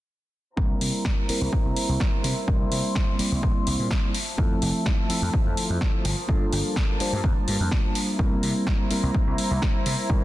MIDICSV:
0, 0, Header, 1, 6, 480
1, 0, Start_track
1, 0, Tempo, 476190
1, 579, Time_signature, 4, 2, 24, 8
1, 10325, End_track
2, 0, Start_track
2, 0, Title_t, "String section"
2, 0, Program_c, 0, 48
2, 578, Note_on_c, 0, 64, 77
2, 578, Note_on_c, 0, 72, 71
2, 579, Note_on_c, 0, 82, 88
2, 2479, Note_off_c, 0, 82, 0
2, 2498, Note_on_c, 0, 84, 85
2, 4142, Note_off_c, 0, 64, 0
2, 4142, Note_off_c, 0, 72, 0
2, 4162, Note_off_c, 0, 84, 0
2, 4175, Note_on_c, 0, 76, 71
2, 4177, Note_on_c, 0, 53, 77
2, 4177, Note_on_c, 0, 81, 84
2, 6078, Note_off_c, 0, 76, 0
2, 6079, Note_off_c, 0, 81, 0
2, 6094, Note_on_c, 0, 81, 88
2, 6095, Note_on_c, 0, 58, 73
2, 8217, Note_off_c, 0, 53, 0
2, 8235, Note_off_c, 0, 58, 0
2, 8235, Note_off_c, 0, 81, 0
2, 8256, Note_on_c, 0, 72, 71
2, 8256, Note_on_c, 0, 82, 84
2, 8257, Note_on_c, 0, 64, 76
2, 10325, Note_off_c, 0, 64, 0
2, 10325, Note_off_c, 0, 72, 0
2, 10325, Note_off_c, 0, 82, 0
2, 10325, End_track
3, 0, Start_track
3, 0, Title_t, "Tine electric piano"
3, 0, Program_c, 1, 4
3, 570, Note_on_c, 1, 55, 85
3, 574, Note_on_c, 1, 58, 78
3, 578, Note_on_c, 1, 60, 80
3, 583, Note_on_c, 1, 64, 80
3, 585, Note_on_c, 1, 70, 93
3, 1267, Note_off_c, 1, 55, 0
3, 1269, Note_off_c, 1, 58, 0
3, 1271, Note_off_c, 1, 60, 0
3, 1273, Note_off_c, 1, 64, 0
3, 1275, Note_off_c, 1, 70, 0
3, 1292, Note_on_c, 1, 55, 69
3, 1294, Note_on_c, 1, 58, 66
3, 1299, Note_on_c, 1, 60, 64
3, 1304, Note_on_c, 1, 64, 63
3, 1307, Note_on_c, 1, 70, 80
3, 2468, Note_off_c, 1, 55, 0
3, 2469, Note_off_c, 1, 58, 0
3, 2471, Note_off_c, 1, 60, 0
3, 2474, Note_off_c, 1, 64, 0
3, 2476, Note_off_c, 1, 70, 0
3, 2490, Note_on_c, 1, 55, 81
3, 2494, Note_on_c, 1, 58, 77
3, 2498, Note_on_c, 1, 60, 79
3, 2502, Note_on_c, 1, 64, 77
3, 2506, Note_on_c, 1, 70, 91
3, 3187, Note_off_c, 1, 55, 0
3, 3189, Note_off_c, 1, 58, 0
3, 3191, Note_off_c, 1, 60, 0
3, 3193, Note_off_c, 1, 64, 0
3, 3195, Note_off_c, 1, 70, 0
3, 3209, Note_on_c, 1, 55, 74
3, 3213, Note_on_c, 1, 58, 67
3, 3218, Note_on_c, 1, 60, 66
3, 3222, Note_on_c, 1, 64, 68
3, 3225, Note_on_c, 1, 74, 83
3, 4160, Note_off_c, 1, 55, 0
3, 4162, Note_off_c, 1, 58, 0
3, 4164, Note_off_c, 1, 60, 0
3, 4166, Note_off_c, 1, 64, 0
3, 4168, Note_off_c, 1, 74, 0
3, 4409, Note_on_c, 1, 53, 87
3, 4413, Note_on_c, 1, 57, 81
3, 4417, Note_on_c, 1, 60, 80
3, 4421, Note_on_c, 1, 64, 84
3, 4425, Note_on_c, 1, 69, 98
3, 5107, Note_off_c, 1, 53, 0
3, 5108, Note_off_c, 1, 57, 0
3, 5110, Note_off_c, 1, 60, 0
3, 5112, Note_off_c, 1, 64, 0
3, 5114, Note_off_c, 1, 69, 0
3, 5128, Note_on_c, 1, 53, 74
3, 5133, Note_on_c, 1, 57, 66
3, 5138, Note_on_c, 1, 60, 65
3, 5142, Note_on_c, 1, 64, 69
3, 5146, Note_on_c, 1, 69, 79
3, 6080, Note_off_c, 1, 53, 0
3, 6082, Note_off_c, 1, 57, 0
3, 6085, Note_off_c, 1, 60, 0
3, 6086, Note_off_c, 1, 64, 0
3, 6088, Note_off_c, 1, 69, 0
3, 6328, Note_on_c, 1, 55, 85
3, 6332, Note_on_c, 1, 58, 79
3, 6336, Note_on_c, 1, 62, 77
3, 6340, Note_on_c, 1, 65, 76
3, 6344, Note_on_c, 1, 69, 93
3, 7026, Note_off_c, 1, 55, 0
3, 7028, Note_off_c, 1, 58, 0
3, 7030, Note_off_c, 1, 62, 0
3, 7032, Note_off_c, 1, 65, 0
3, 7034, Note_off_c, 1, 69, 0
3, 7050, Note_on_c, 1, 55, 75
3, 7053, Note_on_c, 1, 58, 66
3, 7057, Note_on_c, 1, 62, 68
3, 7061, Note_on_c, 1, 65, 68
3, 7065, Note_on_c, 1, 72, 84
3, 8227, Note_off_c, 1, 55, 0
3, 8228, Note_off_c, 1, 58, 0
3, 8231, Note_off_c, 1, 62, 0
3, 8232, Note_off_c, 1, 65, 0
3, 8234, Note_off_c, 1, 72, 0
3, 8249, Note_on_c, 1, 55, 89
3, 8253, Note_on_c, 1, 58, 83
3, 8257, Note_on_c, 1, 60, 82
3, 8260, Note_on_c, 1, 64, 77
3, 8265, Note_on_c, 1, 70, 97
3, 8947, Note_off_c, 1, 55, 0
3, 8948, Note_off_c, 1, 58, 0
3, 8950, Note_off_c, 1, 60, 0
3, 8952, Note_off_c, 1, 64, 0
3, 8954, Note_off_c, 1, 70, 0
3, 8970, Note_on_c, 1, 55, 74
3, 8973, Note_on_c, 1, 58, 65
3, 8978, Note_on_c, 1, 60, 66
3, 8982, Note_on_c, 1, 64, 68
3, 8985, Note_on_c, 1, 70, 82
3, 10147, Note_off_c, 1, 55, 0
3, 10148, Note_off_c, 1, 58, 0
3, 10151, Note_off_c, 1, 60, 0
3, 10153, Note_off_c, 1, 64, 0
3, 10155, Note_off_c, 1, 70, 0
3, 10170, Note_on_c, 1, 55, 81
3, 10175, Note_on_c, 1, 58, 76
3, 10179, Note_on_c, 1, 60, 75
3, 10182, Note_on_c, 1, 64, 77
3, 10186, Note_on_c, 1, 70, 93
3, 10325, Note_off_c, 1, 55, 0
3, 10325, Note_off_c, 1, 58, 0
3, 10325, Note_off_c, 1, 60, 0
3, 10325, Note_off_c, 1, 64, 0
3, 10325, Note_off_c, 1, 70, 0
3, 10325, End_track
4, 0, Start_track
4, 0, Title_t, "Slap bass"
4, 0, Program_c, 2, 36
4, 577, Note_on_c, 2, 36, 90
4, 736, Note_off_c, 2, 36, 0
4, 818, Note_on_c, 2, 48, 78
4, 899, Note_off_c, 2, 48, 0
4, 1424, Note_on_c, 2, 36, 92
4, 1497, Note_off_c, 2, 36, 0
4, 1665, Note_on_c, 2, 36, 80
4, 1737, Note_off_c, 2, 36, 0
4, 1904, Note_on_c, 2, 36, 79
4, 1977, Note_off_c, 2, 36, 0
4, 2258, Note_on_c, 2, 48, 83
4, 2339, Note_off_c, 2, 48, 0
4, 2498, Note_on_c, 2, 36, 89
4, 2657, Note_off_c, 2, 36, 0
4, 2737, Note_on_c, 2, 48, 78
4, 2819, Note_off_c, 2, 48, 0
4, 3345, Note_on_c, 2, 36, 90
4, 3418, Note_off_c, 2, 36, 0
4, 3457, Note_on_c, 2, 34, 96
4, 3539, Note_off_c, 2, 34, 0
4, 3698, Note_on_c, 2, 36, 80
4, 3779, Note_off_c, 2, 36, 0
4, 3823, Note_on_c, 2, 46, 95
4, 3897, Note_off_c, 2, 46, 0
4, 4417, Note_on_c, 2, 41, 92
4, 4576, Note_off_c, 2, 41, 0
4, 4658, Note_on_c, 2, 29, 79
4, 4739, Note_off_c, 2, 29, 0
4, 5263, Note_on_c, 2, 41, 94
4, 5337, Note_off_c, 2, 41, 0
4, 5503, Note_on_c, 2, 41, 78
4, 5577, Note_off_c, 2, 41, 0
4, 5744, Note_on_c, 2, 41, 84
4, 5817, Note_off_c, 2, 41, 0
4, 6096, Note_on_c, 2, 31, 87
4, 6178, Note_off_c, 2, 31, 0
4, 6336, Note_on_c, 2, 43, 95
4, 6496, Note_off_c, 2, 43, 0
4, 6577, Note_on_c, 2, 31, 77
4, 6658, Note_off_c, 2, 31, 0
4, 7184, Note_on_c, 2, 43, 96
4, 7257, Note_off_c, 2, 43, 0
4, 7296, Note_on_c, 2, 41, 96
4, 7378, Note_off_c, 2, 41, 0
4, 7538, Note_on_c, 2, 43, 81
4, 7619, Note_off_c, 2, 43, 0
4, 7662, Note_on_c, 2, 41, 92
4, 7737, Note_off_c, 2, 41, 0
4, 8257, Note_on_c, 2, 36, 90
4, 8416, Note_off_c, 2, 36, 0
4, 8497, Note_on_c, 2, 48, 80
4, 8579, Note_off_c, 2, 48, 0
4, 9103, Note_on_c, 2, 36, 98
4, 9177, Note_off_c, 2, 36, 0
4, 9345, Note_on_c, 2, 36, 77
4, 9418, Note_off_c, 2, 36, 0
4, 9584, Note_on_c, 2, 36, 87
4, 9657, Note_off_c, 2, 36, 0
4, 9938, Note_on_c, 2, 48, 82
4, 10019, Note_off_c, 2, 48, 0
4, 10177, Note_on_c, 2, 36, 93
4, 10325, Note_off_c, 2, 36, 0
4, 10325, End_track
5, 0, Start_track
5, 0, Title_t, "Muted slap bass strokes"
5, 1299, Note_on_c, 9, 29, 43
5, 1400, Note_off_c, 9, 29, 0
5, 3218, Note_on_c, 9, 29, 43
5, 3319, Note_off_c, 9, 29, 0
5, 5138, Note_on_c, 9, 29, 44
5, 5238, Note_off_c, 9, 29, 0
5, 7057, Note_on_c, 9, 29, 44
5, 7158, Note_off_c, 9, 29, 0
5, 7423, Note_on_c, 9, 29, 42
5, 7523, Note_off_c, 9, 29, 0
5, 8979, Note_on_c, 9, 29, 42
5, 9080, Note_off_c, 9, 29, 0
5, 10325, End_track
6, 0, Start_track
6, 0, Title_t, "Drums"
6, 578, Note_on_c, 9, 36, 110
6, 679, Note_off_c, 9, 36, 0
6, 819, Note_on_c, 9, 46, 99
6, 919, Note_off_c, 9, 46, 0
6, 1058, Note_on_c, 9, 36, 109
6, 1063, Note_on_c, 9, 38, 121
6, 1159, Note_off_c, 9, 36, 0
6, 1164, Note_off_c, 9, 38, 0
6, 1300, Note_on_c, 9, 46, 100
6, 1401, Note_off_c, 9, 46, 0
6, 1539, Note_on_c, 9, 36, 115
6, 1640, Note_off_c, 9, 36, 0
6, 1779, Note_on_c, 9, 46, 102
6, 1880, Note_off_c, 9, 46, 0
6, 2019, Note_on_c, 9, 36, 109
6, 2024, Note_on_c, 9, 38, 114
6, 2120, Note_off_c, 9, 36, 0
6, 2125, Note_off_c, 9, 38, 0
6, 2260, Note_on_c, 9, 46, 105
6, 2361, Note_off_c, 9, 46, 0
6, 2499, Note_on_c, 9, 36, 123
6, 2599, Note_off_c, 9, 36, 0
6, 2738, Note_on_c, 9, 46, 99
6, 2839, Note_off_c, 9, 46, 0
6, 2978, Note_on_c, 9, 36, 114
6, 2983, Note_on_c, 9, 38, 122
6, 3079, Note_off_c, 9, 36, 0
6, 3084, Note_off_c, 9, 38, 0
6, 3218, Note_on_c, 9, 46, 109
6, 3319, Note_off_c, 9, 46, 0
6, 3458, Note_on_c, 9, 36, 119
6, 3559, Note_off_c, 9, 36, 0
6, 3698, Note_on_c, 9, 46, 104
6, 3700, Note_on_c, 9, 54, 92
6, 3799, Note_off_c, 9, 46, 0
6, 3801, Note_off_c, 9, 54, 0
6, 3938, Note_on_c, 9, 36, 117
6, 3941, Note_on_c, 9, 38, 116
6, 4039, Note_off_c, 9, 36, 0
6, 4041, Note_off_c, 9, 38, 0
6, 4178, Note_on_c, 9, 46, 106
6, 4279, Note_off_c, 9, 46, 0
6, 4418, Note_on_c, 9, 36, 121
6, 4519, Note_off_c, 9, 36, 0
6, 4657, Note_on_c, 9, 46, 103
6, 4758, Note_off_c, 9, 46, 0
6, 4783, Note_on_c, 9, 54, 42
6, 4884, Note_off_c, 9, 54, 0
6, 4898, Note_on_c, 9, 36, 117
6, 4901, Note_on_c, 9, 38, 120
6, 4999, Note_off_c, 9, 36, 0
6, 5001, Note_off_c, 9, 38, 0
6, 5139, Note_on_c, 9, 46, 107
6, 5239, Note_off_c, 9, 46, 0
6, 5378, Note_on_c, 9, 36, 117
6, 5479, Note_off_c, 9, 36, 0
6, 5618, Note_on_c, 9, 46, 108
6, 5620, Note_on_c, 9, 54, 101
6, 5719, Note_off_c, 9, 46, 0
6, 5721, Note_off_c, 9, 54, 0
6, 5857, Note_on_c, 9, 36, 118
6, 5862, Note_on_c, 9, 38, 109
6, 5958, Note_off_c, 9, 36, 0
6, 5963, Note_off_c, 9, 38, 0
6, 6098, Note_on_c, 9, 46, 113
6, 6199, Note_off_c, 9, 46, 0
6, 6223, Note_on_c, 9, 54, 40
6, 6324, Note_off_c, 9, 54, 0
6, 6337, Note_on_c, 9, 36, 121
6, 6438, Note_off_c, 9, 36, 0
6, 6452, Note_on_c, 9, 54, 26
6, 6553, Note_off_c, 9, 54, 0
6, 6578, Note_on_c, 9, 46, 101
6, 6583, Note_on_c, 9, 54, 84
6, 6678, Note_off_c, 9, 46, 0
6, 6684, Note_off_c, 9, 54, 0
6, 6701, Note_on_c, 9, 54, 41
6, 6801, Note_off_c, 9, 54, 0
6, 6817, Note_on_c, 9, 36, 119
6, 6822, Note_on_c, 9, 38, 116
6, 6918, Note_off_c, 9, 36, 0
6, 6922, Note_off_c, 9, 38, 0
6, 7058, Note_on_c, 9, 46, 104
6, 7159, Note_off_c, 9, 46, 0
6, 7297, Note_on_c, 9, 36, 119
6, 7397, Note_off_c, 9, 36, 0
6, 7419, Note_on_c, 9, 54, 26
6, 7520, Note_off_c, 9, 54, 0
6, 7537, Note_on_c, 9, 46, 105
6, 7638, Note_off_c, 9, 46, 0
6, 7777, Note_on_c, 9, 36, 116
6, 7781, Note_on_c, 9, 38, 106
6, 7877, Note_off_c, 9, 36, 0
6, 7882, Note_off_c, 9, 38, 0
6, 8014, Note_on_c, 9, 54, 87
6, 8017, Note_on_c, 9, 46, 109
6, 8114, Note_off_c, 9, 54, 0
6, 8118, Note_off_c, 9, 46, 0
6, 8147, Note_on_c, 9, 54, 37
6, 8248, Note_off_c, 9, 54, 0
6, 8251, Note_on_c, 9, 54, 53
6, 8257, Note_on_c, 9, 36, 112
6, 8352, Note_off_c, 9, 54, 0
6, 8358, Note_off_c, 9, 36, 0
6, 8389, Note_on_c, 9, 54, 25
6, 8489, Note_off_c, 9, 54, 0
6, 8498, Note_on_c, 9, 46, 100
6, 8501, Note_on_c, 9, 54, 84
6, 8599, Note_off_c, 9, 46, 0
6, 8602, Note_off_c, 9, 54, 0
6, 8626, Note_on_c, 9, 54, 41
6, 8726, Note_off_c, 9, 54, 0
6, 8737, Note_on_c, 9, 36, 110
6, 8742, Note_on_c, 9, 38, 109
6, 8838, Note_off_c, 9, 36, 0
6, 8843, Note_off_c, 9, 38, 0
6, 8969, Note_on_c, 9, 54, 82
6, 8977, Note_on_c, 9, 46, 103
6, 9070, Note_off_c, 9, 54, 0
6, 9078, Note_off_c, 9, 46, 0
6, 9218, Note_on_c, 9, 36, 113
6, 9319, Note_off_c, 9, 36, 0
6, 9342, Note_on_c, 9, 54, 25
6, 9442, Note_off_c, 9, 54, 0
6, 9455, Note_on_c, 9, 54, 80
6, 9458, Note_on_c, 9, 46, 102
6, 9556, Note_off_c, 9, 54, 0
6, 9559, Note_off_c, 9, 46, 0
6, 9698, Note_on_c, 9, 36, 113
6, 9702, Note_on_c, 9, 38, 103
6, 9799, Note_off_c, 9, 36, 0
6, 9802, Note_off_c, 9, 38, 0
6, 9934, Note_on_c, 9, 54, 83
6, 9938, Note_on_c, 9, 46, 103
6, 10035, Note_off_c, 9, 54, 0
6, 10039, Note_off_c, 9, 46, 0
6, 10066, Note_on_c, 9, 54, 40
6, 10167, Note_off_c, 9, 54, 0
6, 10178, Note_on_c, 9, 36, 109
6, 10279, Note_off_c, 9, 36, 0
6, 10325, End_track
0, 0, End_of_file